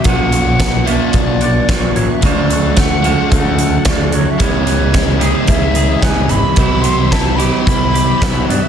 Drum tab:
HH |xxxxxxxx|xxxxxxxx|xxxxxxxx|xxxxxxxx|
SD |--o---o-|--o---o-|--o---o-|--o---o-|
BD |o-o-o-o-|o-o-o-o-|o-o-o-o-|o-o-o-o-|